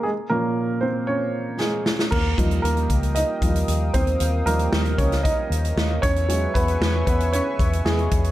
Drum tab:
CC |----------------|x---------------|----------------|----------------|
HH |----------------|--xxxxxxx-xxx-xx|x-xx-xxxx-xx--xx|x-xx--xxx-xx-xxx|
SD |------------o-oo|----------------|----o--o----o---|----o-------o---|
BD |----------------|o-o---o---o---o-|------o-o-----o-|--o---o---o---o-|